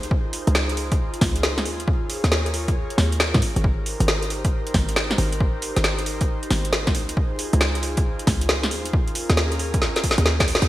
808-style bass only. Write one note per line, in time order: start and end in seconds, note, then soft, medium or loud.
0.00 0.42 C#2 medium
0.47 1.09 C#2 loud
1.21 1.67 C#2 loud
1.65 2.19 D#2 medium
2.24 2.85 D#2 loud
2.98 3.34 D#2 loud
3.34 3.40 G#2 medium
3.56 3.95 G#1 medium
4.00 4.62 G#1 loud
4.74 5.16 G#1 medium
5.18 5.72 G#1 medium
5.77 6.38 G#1 medium
6.51 6.96 G#1 loud
6.95 7.48 C#2 medium
7.53 8.14 C#2 loud
8.27 8.73 C#2 loud
8.71 9.25 D#2 medium
9.30 9.91 D#2 loud
10.18 10.57 D#2 loud
10.62 10.68 D#2 loud